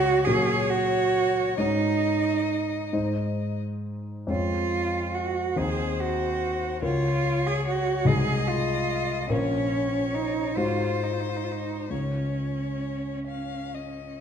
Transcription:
Already playing: C#2 G#3 C#4 F#4 G#4 C#5
0.25 A#2 F#3 C#4 G#4 C#5
0.70 F#4
1.57 G#2 G#3 C#4 D#4 C#5 D#5
2.92 G#2 G#3 D#4 C5
4.27 F2 G#3 C#4 C#5
4.32 F4
5.15 F#4
5.56 D#2 C4 D#4 G#4 C5
6.01 F#4
6.82 C#2 C#4 F4 A#4 C#5
7.47 G#4
7.69 F#4
8.05 C2 G#3 D#4 G#4 D#5
8.48 F4
9.29 A#1 F3 C#4 F4 A#4 C#5
10.14 D#4
10.54 G#2 G#3 F4 F#4 C5
10.58 C5
11.03 D#4
11.13 F4
11.20 D#4
11.30 F4
11.37 D#4
11.44 F4
11.52 D#4
11.90 C#2 G#3 C#4 F4 C#5
13.27 F5
13.74 D#5

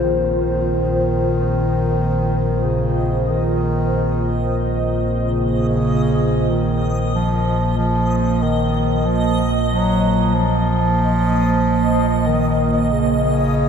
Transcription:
Already playing: A#3 F4 C5
0.00 A#1 A#2 D#3 D#5
2.64 C#3
3.29 D#3
5.24 C#3
6.50 D#3
7.15 F3
7.78 F3
8.43 D#3
9.06 F3
9.69 F#3
10.35 F3
12.27 D#3
12.92 C#3

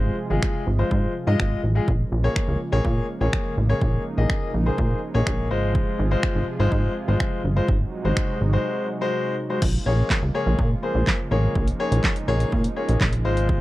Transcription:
Already playing: G#1 C3 F3 G#3 F4 G#4 C5
0.30 G#1 G#3 F4 G#4
0.43 finger snap, kick
0.67 G#1
0.79 G#3 F4 C5
0.91 G#2, kick
1.27 G#2 G#3 F4 D#5
1.40 G#1, finger snap, kick
1.64 A1
1.75 G#3 F4 G#4
1.88 A#1 C#3 A#3, kick
2.12 A#1
2.24 A#3 G#4 C#5
2.36 finger snap, kick
2.48 C#2
2.72 A#1 A#3 G#4 C#5
2.85 A#2, kick
3.21 A#1 A#3 G#4 C#5
3.33 finger snap, kick
3.57 A1
3.69 A#3 G#4 C#5
3.81 A#1 D#4, kick
4.17 A#1 A#3 G#4 D#5
4.30 finger snap, kick
4.54 A#1
4.66 A#3 G#4 C5
4.78 A#2, kick
5.14 A#1 A#3 G#4 C#5
5.27 A#1, finger snap, kick
5.50 G#1 C3 F3 G#3 F4 G#4 C5
5.75 kick
5.99 G#1
6.11 G#3 F4 C5
6.23 finger snap, kick
6.35 G#1
6.59 G#1 G#3 F4 C5
6.72 G#2, kick
7.08 G#1 G#3 F4 C5
7.20 finger snap, kick
7.44 G1
7.56 G#3 F4 C5
7.68 G#1 C3 F#3 G#3 D#4 F#4, kick
8.05 G#1 G#3 F#4 C5
8.17 finger snap, kick
8.41 G#1
8.53 G#3 F#4 C5
9.01 G#3 F#4 C5
9.50 G#3 F#4 C5
9.62 A#1 C#3 F3 G#3 A#3 F4, kick, crash
9.86 A#1 A#3 G#4 C#5
10.10 kick, snare, clap
10.22 C#2
10.34 A#3 G#4 C#5
10.47 A#1
10.59 A#2, kick
10.82 A#3 G#4 C5
10.95 A#1
11.07 kick, snare, clap
11.31 A1 A#3 G#4 C#5
11.55 A#1 D#4, kick
11.68 closed hi-hat
11.79 A#3 G#4 C#5
11.92 A#1, closed hi-hat
12.04 kick, snare, clap
12.16 closed hi-hat
12.27 A#1 A#3 G#4 C#5
12.40 closed hi-hat
12.52 A#2, kick
12.64 closed hi-hat
12.76 A#3 G#4 C#5
12.89 A#1, closed hi-hat
13.01 A#1, kick, snare, clap
13.13 closed hi-hat
13.25 G#1 C3 G#3 F4 G#4 C5
13.37 closed hi-hat
13.49 kick

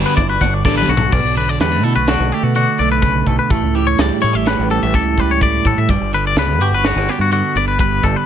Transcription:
Already playing: G2 D3 G3 B3 D4 F#4
0.06 B4
0.17 G1 E4 D5, muted overdriven electric guitar stroke, kick, closed hi-hat
0.29 F#4 B4
0.41 G1 D4 F#5, muted overdriven electric guitar stroke, kick, closed hi-hat
0.54 D5
0.64 A1 G2 D3 G3 B3 D4 A4 D5, kick, snare
0.77 B4, mid tom
0.88 B1 B3 F#4, muted overdriven electric guitar stroke
0.97 floor tom
1.10 B1 B2 D5, kick, crash
1.24 B1
1.35 D3 B4, closed hi-hat
1.49 D5
1.60 E2 G3 B4, snare, closed hi-hat
1.72 A3
1.83 B2 E4 A4, closed hi-hat
1.95 B1 F#4 B4
2.07 D4 F#4, snare, closed hi-hat
2.20 B1
2.32 A3 G4, closed hi-hat
2.43 B2 F#4
2.55 D3 F#4, closed hi-hat
2.78 B1 A3 D5, closed hi-hat
2.92 B4
3.02 C#3 B4, kick, closed hi-hat
3.26 B1 B2 A4, kick, closed hi-hat
3.39 B4
3.50 A1 A2 A4, kick, closed hi-hat
3.63 C#2
3.75 E3 G4, closed hi-hat
3.87 C#5
3.98 C#2 G3 D5, snare, closed hi-hat
4.22 A2 E4 C#5, closed hi-hat
4.33 A1 G4 E5
4.46 C#4 B4, snare, closed hi-hat
4.59 A1
4.70 G3 A4, closed hi-hat
4.83 A1 E5
4.94 C#2 E3 A4, kick, snare, closed hi-hat
5.18 G3 B4, kick, closed hi-hat
5.31 C#5
5.41 A2 D5, kick, closed hi-hat
5.65 A2 E3 A4, kick, closed hi-hat
5.77 A2 E5
5.89 G1 G2 D5, kick, closed hi-hat
6.01 G1
6.13 D3 B4, closed hi-hat
6.27 D5
6.36 C#2 B3 B4, snare, closed hi-hat
6.60 G2 F#4 G4, closed hi-hat
6.72 G1 B4
6.84 B3 F#4, snare, closed hi-hat
6.96 G1 D4
7.08 B3 G4, snare, closed hi-hat
7.19 G2 F#4
7.31 D3 F#4, closed hi-hat
7.55 G1 B3 D5, closed hi-hat
7.68 B4
7.79 G2 B4, kick, closed hi-hat
8.03 G1 D3 A4, kick, closed hi-hat
8.16 B4

